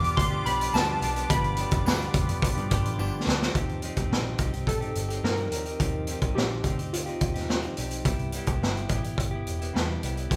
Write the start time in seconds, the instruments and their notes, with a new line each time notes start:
Already playing: picked electric bass E2, analog synth pad F4 B4 D6, synth keys D6
0.02 clean electric guitar B3 D4 G4, closed hi-hat
0.06 clean electric guitar F3
0.17 picked electric bass D2, synth keys C6, kick, closed hi-hat
0.31 clean electric guitar F3 B3 D4 G4
0.44 picked electric bass B1, clean electric guitar F3 B3 D4 G4, synth keys B5, closed hi-hat
0.61 closed hi-hat
0.73 picked electric bass D2, clean electric guitar G2 D3 F3 B3 D4 G4, synth keys A5, snare, tambourine
1.01 picked electric bass B1, clean electric guitar F3 B3 D4 G4, closed hi-hat
1.14 clean electric guitar F3 B3 D4 G4, closed hi-hat
1.29 picked electric bass G1, clean electric guitar G2 D3 F3 B3 D4 G4, synth keys B5, kick, closed hi-hat
1.44 closed hi-hat
1.57 clean electric guitar F3 B3 D4 G4, closed hi-hat
1.71 picked electric bass F1, kick, closed hi-hat
1.84 picked electric bass D2, clean electric guitar G2 D3 F3 B3 D4 G4, snare, tambourine
2.02 closed hi-hat
2.14 picked electric bass F2, kick, closed hi-hat
2.27 clean electric guitar F3 B3 D4 G4, closed hi-hat
2.42 kick, closed hi-hat
2.55 picked electric bass G2, clean electric guitar F3 B3 D4 G4, closed hi-hat
2.70 picked electric bass G1, clean electric guitar F3 B3 D4 G4, kick, closed hi-hat
2.85 picked electric bass A1, closed hi-hat
2.98 picked electric bass G1, clean electric guitar G2 D3 F3 B3 D4 G4, tambourine
3.26 picked electric bass D2, clean electric guitar F3 B3 D4 G4, snare
3.41 clean electric guitar F3 B3 D4 G4, snare
3.55 picked electric bass D#2, clean electric guitar D#3 F3 C4 D#4 G4, kick, closed hi-hat
3.69 closed hi-hat
3.82 clean electric guitar F3 C4 D#4 G4, closed hi-hat
3.96 picked electric bass D#2, clean electric guitar C4 D#4 G4, kick, closed hi-hat
4.11 picked electric bass A#1, clean electric guitar D#3 F3 C4 D#4 G4, snare
4.38 picked electric bass C2, clean electric guitar F3 C4 D#4, kick, closed hi-hat
4.43 clean electric guitar G4
4.53 clean electric guitar D#4 G4, closed hi-hat
4.57 clean electric guitar C4
4.67 picked electric bass A#1, synth keys A4, kick, closed hi-hat
4.81 clean electric guitar C4 D#4 G4, closed hi-hat
4.95 picked electric bass G1, closed hi-hat
5.09 clean electric guitar D#4 G4, closed hi-hat
5.13 clean electric guitar C4
5.23 picked electric bass G2, clean electric guitar D#3 F3 C4 D#4 G4, synth keys A#4, snare
5.37 closed hi-hat
5.51 picked electric bass D#2, clean electric guitar F3 C4 D#4 G4, closed hi-hat
5.65 clean electric guitar C4 D#4 G4, closed hi-hat
5.79 picked electric bass D#2, clean electric guitar D#3 F3 C4 D#4 G4, kick, closed hi-hat
6.07 clean electric guitar F3 C4 D#4, closed hi-hat
6.11 clean electric guitar G4
6.21 picked electric bass C2, clean electric guitar C4 D#4 G4, kick, closed hi-hat
6.35 picked electric bass A#1, clean electric guitar D#3 F3 C4 D#4 G4, synth keys G4, snare
6.63 picked electric bass D2, clean electric guitar F3 C4 D#4 G4, kick, closed hi-hat
6.78 clean electric guitar C4 D#4 G4, closed hi-hat
6.93 synth keys F4, closed hi-hat
7.06 clean electric guitar D#4 G4, closed hi-hat
7.10 clean electric guitar C4
7.21 picked electric bass D#2, kick, closed hi-hat
7.34 clean electric guitar C4 D#4 G4, snare, closed hi-hat
7.49 clean electric guitar D#3 F3 C4 D#4 G4, snare
7.62 closed hi-hat
7.76 picked electric bass B1, clean electric guitar F3 C4 D#4 G4, closed hi-hat
7.91 closed hi-hat
8.05 picked electric bass C2, clean electric guitar C3 G3 B3 E4 G4, kick, closed hi-hat
8.19 closed hi-hat
8.32 clean electric guitar G3 B3, closed hi-hat
8.36 clean electric guitar E4 G4
8.46 picked electric bass C2, clean electric guitar E4 G4, kick, closed hi-hat
8.51 clean electric guitar B3
8.62 picked electric bass G1, clean electric guitar C3 G3 B3 E4 G4, snare
8.77 closed hi-hat
8.89 picked electric bass A1, clean electric guitar G3 B3 E4, kick, closed hi-hat
8.93 clean electric guitar G4
9.03 clean electric guitar B3 E4 G4, closed hi-hat
9.18 picked electric bass G1, kick, closed hi-hat
9.31 clean electric guitar E4 G4
9.35 clean electric guitar B3
9.47 picked electric bass E1, closed hi-hat
9.59 clean electric guitar B3 E4 G4, closed hi-hat
9.74 picked electric bass E2, clean electric guitar C3 G3 B3 E4 G4, snare
10.02 picked electric bass C2, clean electric guitar G3 B3 E4 G4, closed hi-hat
10.16 clean electric guitar B3 E4 G4, closed hi-hat
10.30 picked electric bass C2, clean electric guitar C3 G3 B3 E4 G4, kick, closed hi-hat